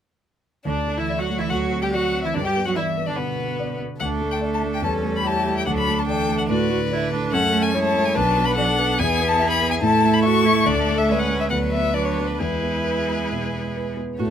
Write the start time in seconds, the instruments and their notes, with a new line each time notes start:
0.65 grand piano D2, cello D3, violin D4 D5, viola D4
0.88 grand piano A3
0.97 cello E3, violin E4 E5, viola E4
1.09 grand piano D5
1.18 cello F#3, viola F#4, violin F#4 F#5
1.29 grand piano A3
1.38 cello E3, viola E4, violin E4 E5
1.49 grand piano D2, cello F#3, viola F#4, violin F#4 F#5
1.71 grand piano C4
1.82 cello G3, viola G4, violin G4 G5
1.92 cello F#3, viola F#4, violin F#4 F#5, grand piano D5
2.14 grand piano C4
2.23 cello E3, viola E4, violin E4 E5
2.34 grand piano G2, cello D3, violin D4 D5, viola D4
2.43 cello G3, violin G4 G5, viola G4
2.57 grand piano B3
2.65 cello F#3, violin F#4 F#5, viola F#4
2.75 cello E3, violin E4 E5, viola E4, grand piano D5
2.97 grand piano B3
3.06 cello D3, violin D4 D5, viola D4
3.16 cello B2, grand piano D3, violin B3 B4, viola B3
3.39 grand piano B3
3.59 grand piano D5
3.80 grand piano B3
4.00 grand piano D2, cello A3, viola D4, violin A4 F#5
4.22 grand piano A3
4.31 violin G5
4.41 viola D4, grand piano D5
4.54 violin A5
4.63 grand piano A3
4.74 violin G5
4.82 grand piano E2, cello G3, viola C#4, violin A4 A5
5.03 grand piano A3
5.16 violin B5
5.24 viola E4, violin G4 A5, grand piano C#5
5.46 grand piano A3
5.58 violin G5
5.66 grand piano D2, cello F#3, viola D4, violin A4 F#5
5.78 violin B5
5.88 grand piano A3
5.99 violin A5
6.07 cello E3, violin A4 G5, grand piano D5
6.29 grand piano A3
6.38 violin F#5
6.48 grand piano A2, cello D3, viola F#4, violin B4 D5
6.69 viola F#4
6.91 viola E4, grand piano D5
7.12 grand piano A3, viola D4
7.32 grand piano F#2, cello A3, viola C#4, violin A4 F#5
7.53 grand piano A3
7.63 violin G#5
7.73 cello G#3, viola E4, violin C#5, grand piano C#5
7.83 violin A5
7.95 grand piano A3
8.05 violin G#5
8.14 grand piano B1, cello F#3, viola D4, violin B4 A5
8.38 grand piano B3
8.45 violin B5
8.55 cello F#3, viola D4, violin A4 F#5, grand piano D5
8.78 cello B3, grand piano B3
8.99 grand piano E2, viola E4, violin G#4 G#5
9.21 grand piano B3
9.28 violin A5
9.40 violin G#4, grand piano E5
9.50 violin B5
9.61 grand piano B3
9.71 violin G#5
9.81 grand piano A2, cello A3, viola E4, violin A4 A5
10.03 grand piano A3
10.14 violin B5
10.23 viola F#4, grand piano E5, violin C#6
10.44 grand piano A3, viola E4
10.65 grand piano D2, viola D4, violin A4 D5
10.88 grand piano A3
10.98 violin E5
11.09 cello G#3, viola C#4, violin B4, grand piano D5
11.19 violin F#5
11.31 grand piano A3
11.40 violin E5
11.50 grand piano D2, cello F#3, viola B3, violin B4 F#5
11.72 grand piano B3, violin E5
11.93 cello F#3, viola D4, grand piano B4, violin D5
12.05 violin C#5
12.18 grand piano B3
12.27 violin B4
12.38 grand piano E2, cello G#3, viola E4, violin G#4 B4
12.63 grand piano B3
12.84 grand piano B4
13.09 grand piano B3
13.32 grand piano B2
13.54 grand piano B3
13.76 grand piano B4
13.97 grand piano B3
14.19 grand piano A2, cello A3, viola F#4, violin A4 C#5